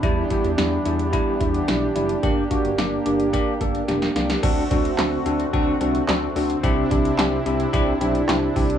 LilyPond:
<<
  \new Staff \with { instrumentName = "Tine electric piano" } { \time 4/4 \key d \mixolydian \tempo 4 = 109 <g d' e'>8 <g d' e'>8 <g d' e'>8 <g d' e'>8 <g d' e'>8 <g d' e'>8 <g d' e'>8 <g d' e'>8 | <bes d' g'>8 <bes d' fis'>8 <bes d' g'>8 <bes d' g'>8 <bes d' g'>8 <bes d' a'>8 <bes d' g'>8 <bes d' g'>8 | <c' d' fis' a'>8 <c' d' fis' a'>8 <c' d' fis' a'>8 <c' d' fis' a'>8 <c' d' fis' a'>8 <c' d' fis' a'>8 <c' d' fis' a'>8 <c' d' fis' a'>8 | <c' d' e' g'>8 <c' d' e' g'>8 <c' d' e' g'>8 <c' d' e' g'>8 <c' d' e' g'>8 <c' d' e' g'>8 <c' d' e' g'>8 <c' d' e' g'>8 | }
  \new Staff \with { instrumentName = "Analog synth pad" } { \time 4/4 \key d \mixolydian << { <d' g'>1~ | <d' g'>1 | <c' fis'>1 | <d' e'>1 | } \\ { <e b>1 | bes1 | <d a>1 | c1 | } >> }
  \new Staff \with { instrumentName = "Analog synth bass" } { \clef bass \time 4/4 \key d \mixolydian e,8 r16 e,16 e,8 e,8. r16 e,8 b,,8 fis,,8 | g,,8 r16 g,,16 g,,8 g,,8. r16 g,,8 e,,8 c,8 | d,8 d,8 d,8 d,8 d,8 c,8 d,8 d,8 | c,8 c,8 c,8 c,8 c,8 b,,8 c,8 c,8 | }
  \new DrumStaff \with { instrumentName = "Drums" } \drummode { \time 4/4 <hh bd>8 <hh bd>16 hh16 <hh sn>8 hh16 hh16 <hh bd>8 <hh bd>16 hh16 <hh sn>8 hh16 hh16 | <hh bd>8 <hh bd>16 hh16 <hh sn>8 hh16 hh16 <hh bd>8 <hh bd>16 hh16 <hh sn>16 sn16 <hh sn>16 <hh sn>16 | <cymc hh bd>8 <hh bd>16 hh16 <hc hh sn>8 hh16 hh16 <hh bd>8 hh16 hh16 <hc hh sn>8 hho16 hh16 | <hh bd>8 <hh bd>16 hh16 <hc hh sn>8 hh16 hh16 <hh bd>8 hh16 hh16 <hc hh sn>8 <hho bd>16 hh16 | }
>>